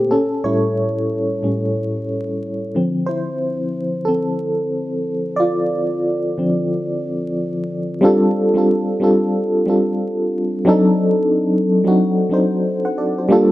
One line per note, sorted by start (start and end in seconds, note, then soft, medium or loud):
0.00 0.12 A#3 medium
0.00 0.11 C4 medium
0.00 0.12 G4 loud
0.00 0.11 A4 medium
0.11 0.42 C#4 medium
0.11 0.44 A4 medium
0.44 1.38 A2 medium
0.44 1.39 G3 medium
0.44 1.39 C#4 medium
0.44 1.72 E4 medium
0.44 1.71 C#5 medium
1.43 1.72 A2 medium
1.43 1.73 G3 soft
1.43 1.73 C#4 medium
2.75 3.69 D3 medium
2.75 3.69 F3 soft
2.75 3.70 C4 medium
3.06 4.03 E4 medium
3.06 4.02 C5 medium
4.05 5.35 C4 medium
4.05 5.41 A4 medium
5.36 7.33 F4 medium
5.36 7.31 D5 medium
6.38 7.32 D3 medium
6.38 7.32 F3 medium
6.38 7.33 C4 medium
8.01 8.42 G3 loud
8.01 8.42 C4 medium
8.01 8.43 D4 medium
8.01 8.43 F4 medium
8.01 8.44 A4 loud
8.54 8.92 G3 medium
8.54 8.92 C4 medium
8.54 8.93 D4 medium
8.54 8.93 F4 medium
8.54 8.94 A4 medium
9.00 9.55 G3 medium
9.00 9.56 C4 medium
9.00 9.57 D4 medium
9.00 9.57 F4 medium
9.00 9.57 A4 medium
9.66 10.47 G3 medium
9.66 10.48 C4 medium
9.66 10.48 D4 medium
9.66 10.49 F4 medium
9.66 10.49 A4 medium
10.65 11.58 F#3 loud
10.65 11.58 C4 medium
10.65 11.59 D4 medium
10.65 11.59 D#4 loud
10.65 11.60 A4 loud
11.84 12.22 F#3 medium
11.84 12.22 C4 medium
11.84 12.23 D4 medium
11.84 12.23 D#4 medium
11.88 12.24 F#4 medium
12.29 12.85 F#3 medium
12.29 12.86 C4 medium
12.29 12.86 D4 medium
12.29 12.87 D#4 medium
12.33 12.65 C5 medium
12.85 12.96 C5 medium
12.85 12.96 F#5 medium
12.98 13.17 A4 medium
12.98 13.16 D5 medium
13.18 13.49 F#4 soft
13.18 13.49 C5 medium
13.29 13.52 G3 loud
13.29 13.52 A#3 medium
13.29 13.52 D4 medium
13.29 13.52 F4 medium
13.29 13.52 A4 loud